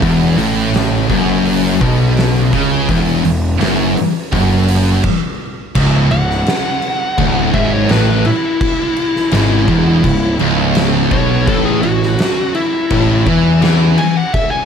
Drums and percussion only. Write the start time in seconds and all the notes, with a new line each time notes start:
0.02 kick, open hi-hat
0.38 open hi-hat
0.74 snare, open hi-hat
1.10 kick, open hi-hat
1.45 open hi-hat
1.81 kick, open hi-hat
2.17 snare, open hi-hat
2.53 kick, open hi-hat
2.89 kick, open hi-hat
3.25 open hi-hat
3.61 snare, open hi-hat
3.97 open hi-hat
4.33 kick, open hi-hat
4.68 open hi-hat
5.04 kick, crash
5.75 kick, crash
6.11 crash
6.30 snare
6.46 snare, crash
6.82 crash
7.18 kick, crash
7.54 kick, crash
7.89 snare, crash
8.25 crash
8.61 kick, crash
8.96 crash
9.16 snare
9.31 snare, crash
9.68 kick, crash
10.04 kick, crash
10.39 crash
10.75 snare, crash
11.11 kick, crash
11.47 kick, crash
11.83 crash
12.03 snare
12.19 snare, crash
12.55 crash
12.90 kick, crash
13.26 kick, crash
13.62 snare, crash
13.98 crash
14.34 kick, crash